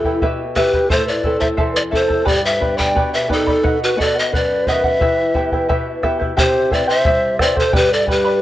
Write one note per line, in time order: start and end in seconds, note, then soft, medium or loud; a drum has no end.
0.00 0.21 E3 medium
0.00 0.43 B3 soft
0.00 0.24 E4 medium
0.00 0.43 E4 soft
0.00 0.43 G4 soft
0.00 0.25 A4 loud
0.04 0.22 E4 soft
0.04 0.22 B4 soft
0.04 0.22 G5 soft
0.04 bombo low soft
0.22 0.89 B2 medium
0.22 0.56 E4 medium
0.22 0.56 G4 medium
0.22 0.57 B4 medium
0.22 0.56 E5 medium
0.22 0.57 G5 medium
0.22 bombo low medium
0.55 0.84 B3 soft
0.55 0.84 E4 soft
0.55 0.74 E4 medium
0.55 0.91 G4 medium
0.55 0.84 G4 medium
0.55 0.92 B4 medium
0.55 0.73 B4 medium
0.55 0.74 E5 medium
0.55 0.72 G5 medium
0.55 bombo rim soft
0.55 bombo low soft
0.74 0.89 E4 soft
0.74 0.91 B4 soft
0.74 0.91 G5 soft
0.74 bombo low soft
0.89 1.58 A2 medium
0.89 1.23 E4 medium
0.89 1.05 A4 medium
0.89 1.24 A4 medium
0.89 1.24 C5 medium
0.89 1.08 C5 medium
0.89 1.23 E5 medium
0.89 1.24 A5 medium
0.89 bombo low medium
1.06 1.39 B4 medium
1.06 1.40 D5 medium
1.24 1.80 C4 soft
1.24 1.41 E4 soft
1.24 1.80 E4 soft
1.24 1.40 A4 medium
1.24 1.80 A4 soft
1.24 1.42 E5 soft
1.24 1.39 A5 medium
1.24 bombo low medium
1.39 1.57 E4 soft
1.39 1.57 A4 soft
1.39 1.47 C5 medium
1.39 1.48 E5 medium
1.39 1.57 A5 soft
1.39 bombo low medium
1.57 2.26 E2 medium
1.57 1.90 E4 medium
1.57 1.90 A4 medium
1.57 1.92 C5 medium
1.57 1.90 E5 medium
1.57 1.91 A5 medium
1.57 bombo low medium
1.73 1.79 B4 medium
1.73 1.82 D5 medium
1.91 2.20 C4 soft
1.91 2.09 E4 medium
1.91 2.20 E4 soft
1.91 2.28 A4 medium
1.91 2.08 A4 medium
1.91 2.21 A4 medium
1.91 2.09 E5 medium
1.91 2.07 A5 medium
1.91 bombo low medium
1.96 2.29 C5 medium
2.08 2.25 E4 soft
2.08 2.25 A4 soft
2.08 2.25 A5 soft
2.08 bombo low soft
2.25 2.94 G2 medium
2.25 2.60 G4 medium
2.25 2.43 G4 medium
2.25 2.60 B4 medium
2.25 2.60 D5 medium
2.25 2.45 D5 loud
2.25 2.59 G5 medium
2.25 2.60 B5 medium
2.25 bombo low medium
2.44 2.78 B4 medium
2.44 2.79 E5 medium
2.60 3.16 B3 soft
2.60 3.16 D4 soft
2.60 3.16 G4 medium
2.60 2.77 B4 medium
2.60 2.77 D5 medium
2.60 2.78 G5 medium
2.60 2.76 B5 medium
2.60 bombo low soft
2.77 2.95 B4 soft
2.77 3.12 D5 medium
2.77 2.95 D5 soft
2.77 3.13 G5 medium
2.77 2.95 B5 soft
2.77 bombo low medium
2.95 3.62 B2 medium
2.95 3.30 G4 medium
2.95 3.28 B4 medium
2.95 3.29 D5 medium
2.95 3.28 G5 medium
2.95 3.30 B5 medium
2.95 bombo low medium
3.14 3.29 B4 medium
3.14 3.29 E5 medium
3.29 3.57 B3 soft
3.29 3.78 D#4 medium
3.29 3.57 G4 medium
3.29 3.79 A4 medium
3.29 3.46 B4 medium
3.29 3.57 D5 soft
3.29 3.46 D5 medium
3.29 3.47 G5 medium
3.29 3.45 B5 medium
3.29 bombo low medium
3.47 3.62 B4 soft
3.47 3.63 D5 medium
3.47 3.64 B5 soft
3.47 bombo low soft
3.63 4.30 B2 medium
3.63 3.96 B4 medium
3.63 3.97 D#5 medium
3.63 3.98 F#5 medium
3.63 bombo low medium
3.83 3.98 F#4 medium
3.83 3.99 B4 medium
3.96 4.52 B3 soft
3.96 4.52 D#4 soft
3.96 4.53 F#4 soft
3.96 4.18 A4 medium
3.96 4.15 B4 medium
3.96 4.15 D#5 medium
3.96 4.14 F#5 medium
3.96 bombo low medium
4.01 4.21 D5 medium
4.15 4.33 B4 medium
4.15 4.32 D#5 soft
4.15 4.32 F#5 soft
4.19 4.34 D#5 medium
4.32 4.99 F#2 medium
4.32 4.66 B4 medium
4.32 4.69 B4 medium
4.32 4.69 D5 medium
4.32 4.67 F#5 medium
4.32 bombo low medium
4.67 4.95 D#3 soft
4.67 4.94 B3 soft
4.67 4.94 F#4 soft
4.67 4.84 B4 medium
4.67 4.72 C5 medium
4.67 4.83 D#5 medium
4.67 6.04 E5 medium
4.67 4.83 F#5 medium
4.67 bombo low soft
4.71 6.03 B4 medium
4.84 5.01 D#5 soft
4.84 5.01 F#5 soft
4.84 bombo low medium
5.00 5.67 E3 medium
5.00 5.34 E4 medium
5.00 5.35 G4 medium
5.00 5.34 B4 medium
5.00 5.33 E5 medium
5.00 5.35 G5 medium
5.00 bombo low medium
5.34 5.89 B3 soft
5.34 5.90 E4 soft
5.34 5.52 E4 soft
5.34 5.90 G4 soft
5.34 5.52 B4 medium
5.34 5.52 E5 medium
5.34 5.51 G5 medium
5.34 bombo low medium
5.52 5.68 E4 soft
5.52 5.68 B4 soft
5.52 5.68 G5 medium
5.52 bombo low soft
5.69 6.35 B2 medium
5.69 6.02 E4 medium
5.69 6.03 G4 medium
5.69 6.03 B4 medium
5.69 6.02 E5 medium
5.69 6.03 G5 medium
5.69 bombo low medium
6.03 6.30 B3 soft
6.03 6.30 E4 soft
6.03 6.20 E4 medium
6.03 6.31 G4 soft
6.03 6.19 B4 medium
6.03 6.20 E5 medium
6.03 6.18 G5 medium
6.03 bombo rim soft
6.03 bombo low soft
6.20 6.36 E4 soft
6.20 6.37 B4 soft
6.20 6.36 G5 medium
6.20 bombo low soft
6.37 7.70 C3 medium
6.37 6.70 E4 medium
6.37 6.71 G4 medium
6.37 6.74 G4 medium
6.37 6.71 C5 medium
6.37 6.75 C5 loud
6.37 6.70 E5 medium
6.37 6.72 G5 medium
6.37 bombo low medium
6.71 7.06 C4 medium
6.71 6.88 E4 medium
6.71 6.86 B4 medium
6.71 6.87 C5 medium
6.71 6.89 D5 medium
6.71 6.88 E5 medium
6.71 6.86 G5 medium
6.71 bombo low medium
6.87 7.04 E4 soft
6.87 7.35 C5 medium
6.87 7.05 C5 soft
6.87 7.37 E5 loud
6.87 7.05 G5 medium
7.05 7.39 G3 medium
7.05 7.39 E4 medium
7.05 7.39 G4 medium
7.05 7.39 C5 medium
7.05 7.38 E5 medium
7.05 7.40 G5 medium
7.05 bombo low medium
7.39 7.74 C4 medium
7.39 7.56 E4 medium
7.39 7.55 B4 medium
7.39 7.56 C5 medium
7.39 7.57 D5 medium
7.39 7.57 E5 medium
7.39 7.55 G5 medium
7.39 bombo rim medium
7.39 bombo low medium
7.57 7.73 E4 soft
7.57 7.73 A4 medium
7.57 7.73 C5 medium
7.57 7.74 C5 medium
7.57 7.72 G5 medium
7.57 bombo low medium
7.73 8.42 G2 medium
7.73 8.07 G4 medium
7.73 7.90 G4 medium
7.73 8.07 B4 medium
7.73 7.91 B4 medium
7.73 8.08 D5 medium
7.73 8.07 G5 medium
7.73 8.08 B5 medium
7.73 bombo low medium
7.92 8.07 A4 medium
7.92 8.08 D5 medium
8.08 8.42 G3 medium
8.08 8.42 G4 medium
8.08 8.25 B4 medium
8.08 8.42 B4 medium
8.08 8.25 D5 medium
8.08 8.25 G5 medium
8.08 8.23 B5 medium
8.08 bombo low medium
8.25 8.41 B4 soft
8.25 8.41 D5 soft
8.25 8.41 B5 medium